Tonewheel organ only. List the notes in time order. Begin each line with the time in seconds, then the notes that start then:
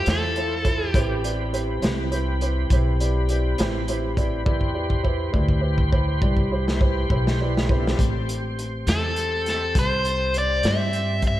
Already playing: E4 F4 C5
0.95 C4 G4 B4
4.48 G4 B4 C5
7.69 A3 B3
7.73 C4 D4
7.79 E4 F4
7.86 G4 A4
7.91 B4 C5
7.97 C4 G4 C5 D5